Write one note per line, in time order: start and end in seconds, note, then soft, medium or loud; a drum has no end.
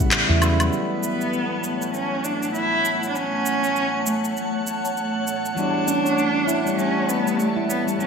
0.00 0.22 A1 medium
0.00 0.41 C#3 medium
0.00 0.11 G3 medium
0.00 0.68 A3 medium
0.00 0.42 B3 medium
0.00 0.43 E4 medium
0.00 0.73 F#4 medium
0.00 0.68 A4 medium
0.00 0.72 E5 loud
0.00 0.71 F#5 medium
0.00 shaker soft
0.11 clap loud
0.11 closed hi-hat medium
0.11 shaker soft
0.29 0.68 E2 medium
0.29 0.41 E4 loud
0.41 0.69 C#3 medium
0.41 0.69 F#3 medium
0.41 0.69 B3 medium
0.41 0.70 E4 loud
0.41 closed hi-hat soft
0.41 low woodblock medium
0.41 shaker medium
0.59 0.67 G3 medium
0.59 closed hi-hat soft
0.59 low woodblock medium
0.59 shaker soft
0.70 5.53 E3 medium
0.70 5.54 F#3 medium
0.70 8.07 A3 medium
0.70 1.89 B3 medium
0.70 5.54 B3 medium
0.70 5.55 E4 medium
0.70 8.07 C#5 medium
0.70 8.07 F#5 medium
0.70 8.07 A5 medium
0.70 shaker soft
1.03 shaker medium
1.21 shaker soft
1.33 shaker soft
1.64 shaker medium
1.82 shaker soft
1.94 2.25 C#4 medium
1.94 shaker soft
2.24 2.54 D4 medium
2.24 shaker medium
2.43 shaker soft
2.54 3.05 E4 loud
2.54 shaker soft
2.85 shaker medium
3.03 shaker soft
3.09 3.17 D4 medium
3.15 4.05 C#4 loud
3.15 shaker soft
3.46 shaker medium
3.64 shaker soft
3.76 shaker soft
4.06 4.62 A3 medium
4.06 shaker medium
4.25 shaker soft
4.37 shaker soft
4.67 shaker medium
4.85 shaker soft
4.97 shaker soft
5.27 shaker medium
5.45 shaker soft
5.55 8.07 E3 medium
5.55 5.74 G3 medium
5.55 8.07 B3 medium
5.55 6.74 D4 loud
5.55 8.07 F#4 medium
5.55 shaker soft
5.59 8.07 E4 medium
5.87 6.04 C#4 medium
5.87 shaker medium
6.05 6.46 C#5 medium
6.05 shaker soft
6.18 shaker soft
6.47 6.58 E4 medium
6.47 shaker medium
6.66 6.76 G3 medium
6.66 shaker soft
6.78 6.95 G3 medium
6.78 7.10 C#4 medium
6.78 shaker soft
7.09 7.40 B3 medium
7.09 shaker medium
7.26 7.38 G3 medium
7.26 shaker soft
7.39 7.69 A3 medium
7.39 shaker soft
7.56 7.68 E4 medium
7.69 7.83 B3 medium
7.69 shaker medium
7.87 7.94 G3 medium
7.87 shaker soft
7.99 8.07 G3 medium
7.99 8.07 C#4 loud
7.99 shaker soft